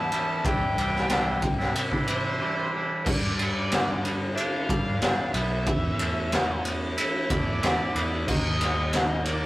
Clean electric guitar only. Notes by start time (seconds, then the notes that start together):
Already playing: B3 E4
0.00 G3
0.11 E3 G3 B3 E4
0.43 C3 E3 G3 D4 E4
0.77 E3 G3 D4 E4
1.08 C3 E3 G3 D4 E4
1.25 G3 D4 E4
1.43 muted clean electric guitar stroke
1.58 G3 D4 E4
1.91 G3 D4 E4
2.08 E3 G3 D4 E4
2.25 G3 D4 E4
2.39 C3 E3 G3 D4
2.43 E4
2.55 G3 D4 E4
2.73 E3 G3 D4 E4
3.06 G2
3.38 G3
3.71 D3
4.03 B3
4.36 D4
4.69 G3
5.02 D4
5.35 B3
5.68 E3
6.00 A3
6.33 E3
6.65 B3
6.97 E4
7.31 A3
7.62 E4
7.96 B3
8.27 D#3
8.61 G3
8.93 D#3
9.27 A#3